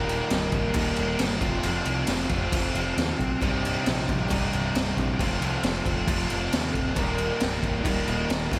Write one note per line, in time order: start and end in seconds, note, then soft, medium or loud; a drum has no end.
0.00 0.20 D#1 loud
0.00 0.72 D#2 loud
0.00 0.73 A#2 loud
0.00 0.30 D#3 loud
0.00 0.74 D#3 loud
0.00 0.28 G3 medium
0.00 0.74 G3 loud
0.00 0.29 A#3 loud
0.00 0.74 A#3 loud
0.00 0.30 D#4 loud
0.00 0.74 D#4 loud
0.00 1.40 D#4 medium
0.00 0.30 A#4 medium
0.00 1.40 A#4 medium
0.00 1.40 G5 medium
0.09 crash medium
0.29 0.48 C1 loud
0.29 0.73 G3 medium
0.29 0.74 A#3 medium
0.29 0.74 D#4 medium
0.29 0.74 A#4 medium
0.29 snare loud
0.29 crash medium
0.52 0.70 C1 medium
0.52 kick medium
0.52 crash medium
0.73 0.92 D#1 medium
0.73 1.39 D#2 medium
0.73 1.39 A#2 medium
0.73 1.19 D#3 loud
0.73 1.41 D#3 medium
0.73 1.16 G3 loud
0.73 1.41 G3 loud
0.73 1.18 A#3 medium
0.73 1.42 A#3 medium
0.73 1.18 D#4 loud
0.73 1.42 D#4 medium
0.73 1.19 A#4 loud
0.73 kick loud
0.73 crash loud
0.96 1.15 D#1 loud
0.96 crash medium
1.18 1.36 G1 medium
1.18 1.41 G3 medium
1.18 1.42 A#3 medium
1.18 1.41 D#4 medium
1.18 1.40 A#4 medium
1.18 snare loud
1.18 crash loud
1.40 1.59 F1 medium
1.40 2.28 F2 loud
1.40 2.28 C3 loud
1.40 2.29 F3 loud
1.40 2.29 A3 loud
1.40 3.40 C4 medium
1.40 1.63 C4 medium
1.40 1.64 F4 medium
1.40 1.63 A4 medium
1.40 3.40 A4 medium
1.40 3.40 F5 medium
1.40 kick loud
1.40 crash medium
1.44 2.30 C4 loud
1.44 2.29 F4 loud
1.63 1.81 F1 loud
1.63 2.06 F3 medium
1.63 2.08 C4 medium
1.63 2.08 A4 medium
1.63 crash medium
1.85 2.03 C2 medium
1.85 crash medium
2.07 2.25 F1 loud
2.07 2.51 F3 medium
2.07 2.53 C4 medium
2.07 2.53 F4 medium
2.07 2.53 A4 medium
2.07 snare loud
2.07 crash loud
2.29 2.47 F1 medium
2.29 3.19 F2 medium
2.29 3.18 C3 medium
2.29 3.18 F3 medium
2.29 3.18 A3 medium
2.29 5.20 C4 medium
2.29 3.18 F4 medium
2.29 kick medium
2.29 crash medium
2.52 2.69 F1 medium
2.52 2.97 F3 loud
2.52 2.98 C4 medium
2.52 2.98 F4 loud
2.52 2.98 A4 loud
2.52 kick loud
2.52 crash loud
2.75 2.92 F1 loud
2.75 crash medium
2.97 3.14 D#2 medium
2.97 3.20 F3 medium
2.97 3.20 C4 medium
2.97 3.19 F4 medium
2.97 3.18 A4 medium
2.97 snare loud
2.97 crash medium
3.19 3.36 B1 medium
3.19 3.40 C4 soft
3.19 3.42 F4 medium
3.19 3.41 A4 medium
3.19 kick medium
3.19 crash medium
3.40 3.76 C1 loud
3.40 4.28 C2 medium
3.40 4.28 G2 medium
3.40 3.85 C3 medium
3.40 4.30 C3 loud
3.40 3.84 G3 medium
3.40 4.30 G3 loud
3.40 3.86 C4 medium
3.40 5.18 C4 medium
3.40 3.86 D#4 medium
3.40 4.30 D#4 loud
3.40 5.17 G4 medium
3.40 3.86 G4 medium
3.40 5.18 D#5 medium
3.40 kick loud
3.40 crash medium
3.65 crash medium
3.85 4.04 A#1 medium
3.85 4.08 G3 medium
3.85 4.07 C4 medium
3.85 4.06 D#4 medium
3.85 4.05 G4 medium
3.85 snare loud
3.85 crash medium
4.06 4.25 A#1 medium
4.06 4.28 C4 medium
4.06 4.29 D#4 medium
4.06 4.28 G4 medium
4.06 kick medium
4.06 crash medium
4.28 4.47 C1 medium
4.28 5.17 C2 medium
4.28 5.17 G2 medium
4.28 4.74 C3 medium
4.28 5.19 C3 medium
4.28 4.72 G3 medium
4.28 4.74 C4 loud
4.28 4.74 D#4 loud
4.28 4.74 G4 loud
4.28 kick loud
4.28 crash loud
4.32 5.19 G3 medium
4.32 5.19 D#4 medium
4.53 4.70 C1 medium
4.53 crash medium
4.74 4.92 C1 medium
4.74 4.96 G3 medium
4.74 4.97 C4 medium
4.74 4.97 D#4 medium
4.74 4.96 G4 medium
4.74 snare loud
4.74 crash medium
4.97 5.14 A#1 medium
4.97 5.19 C4 medium
4.97 5.20 D#4 medium
4.97 5.20 G4 medium
4.97 kick medium
4.97 crash medium
5.19 5.37 F1 loud
5.19 6.06 F2 medium
5.19 6.07 C3 loud
5.19 5.62 F3 loud
5.19 6.07 F3 medium
5.19 6.07 A3 loud
5.19 6.95 C4 medium
5.19 5.63 C4 medium
5.19 6.08 C4 loud
5.19 5.63 F4 medium
5.19 6.08 F4 loud
5.19 6.95 A4 medium
5.19 5.64 A4 loud
5.19 6.95 F5 medium
5.19 kick loud
5.19 crash medium
5.41 5.58 C2 medium
5.41 crash medium
5.63 5.80 F1 medium
5.63 5.85 F3 medium
5.63 5.86 C4 medium
5.63 5.84 F4 medium
5.63 5.84 A4 medium
5.63 snare loud
5.63 crash loud
5.85 6.03 F1 loud
5.85 6.08 C4 medium
5.85 6.08 F4 medium
5.85 6.08 A4 medium
5.85 kick loud
5.85 crash medium
6.07 6.24 F1 medium
6.07 6.95 F2 medium
6.07 6.95 C3 medium
6.07 6.50 F3 medium
6.07 6.96 F3 medium
6.07 6.96 A3 medium
6.07 6.52 C4 medium
6.07 6.96 C4 medium
6.07 6.52 F4 loud
6.07 6.97 F4 medium
6.07 6.53 A4 medium
6.07 kick loud
6.07 crash loud
6.30 6.48 F1 loud
6.30 crash medium
6.51 6.70 D#2 loud
6.51 6.74 F3 medium
6.51 6.74 C4 medium
6.51 6.74 F4 medium
6.51 6.72 A4 medium
6.51 snare loud
6.51 crash loud
6.73 6.91 D1 loud
6.73 6.96 C4 medium
6.73 6.96 F4 medium
6.73 6.96 A4 medium
6.73 kick medium
6.73 crash medium
6.95 7.30 D#1 loud
6.95 7.83 D#2 loud
6.95 7.83 A#2 loud
6.95 7.40 D#3 medium
6.95 7.83 D#3 loud
6.95 7.39 G3 medium
6.95 7.84 G3 loud
6.95 7.39 A#3 medium
6.95 7.84 A#3 loud
6.95 7.39 D#4 loud
6.95 8.51 D#4 medium
6.95 7.85 D#4 loud
6.95 7.40 A#4 medium
6.95 8.50 A#4 medium
6.95 8.51 G5 medium
6.95 kick loud
6.95 crash medium
7.18 crash medium
7.40 7.59 C1 medium
7.40 7.85 G3 medium
7.40 7.85 A#3 medium
7.40 7.85 D#4 medium
7.40 7.86 A#4 medium
7.40 snare loud
7.40 crash loud
7.63 7.80 C1 medium
7.63 kick medium
7.63 crash medium
7.84 8.02 D#1 medium
7.84 8.50 D#2 medium
7.84 8.50 A#2 medium
7.84 8.50 D#3 medium
7.84 8.30 D#3 loud
7.84 8.50 G3 medium
7.84 8.27 G3 loud
7.84 8.51 A#3 medium
7.84 8.28 A#3 loud
7.84 8.51 D#4 medium
7.84 8.29 D#4 loud
7.84 8.30 A#4 loud
7.84 kick loud
7.84 crash loud
8.08 8.25 D#1 loud
8.08 crash medium
8.28 8.47 D#1 medium
8.28 8.51 G3 medium
8.28 8.52 A#3 medium
8.28 8.52 D#4 medium
8.28 8.50 A#4 medium
8.28 snare loud
8.28 crash medium
8.50 8.59 F1 medium
8.50 8.59 F2 loud
8.50 8.59 C3 loud
8.50 8.59 F3 loud
8.50 8.59 A3 loud
8.50 8.59 C4 medium
8.50 8.59 C4 loud
8.50 8.59 C#4 medium
8.50 8.59 F4 medium
8.50 8.59 F4 loud
8.50 8.59 A4 medium
8.50 8.59 A#4 medium
8.50 8.59 F#5 medium
8.50 kick loud
8.50 crash loud